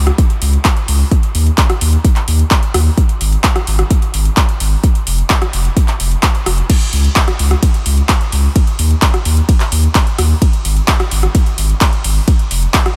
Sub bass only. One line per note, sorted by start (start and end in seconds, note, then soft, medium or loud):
0.00 0.11 C#2 medium
0.42 0.57 C#2 medium
0.88 1.04 C#2 medium
1.35 1.50 D#2 medium
1.81 1.97 D#2 medium
2.28 2.43 D#2 medium
2.74 2.90 D#2 medium
3.21 3.36 G#1 medium
3.67 3.83 G#1 loud
4.14 4.29 G#1 medium
4.60 4.76 G#1 medium
5.07 5.22 F1 medium
5.53 5.69 F1 medium
6.00 6.15 F1 medium
6.46 6.62 F1 medium
6.93 7.08 C#2 medium
7.39 7.55 C#2 loud
7.86 8.02 C#2 medium
8.32 8.48 C#2 medium
8.79 8.95 D#2 medium
9.25 9.41 D#2 medium
9.72 9.88 D#2 medium
10.19 10.34 D#2 medium
10.65 10.81 G#1 loud
11.11 11.27 G#1 loud
11.58 11.74 G#1 medium
12.04 12.20 G#1 medium
12.51 12.67 F1 medium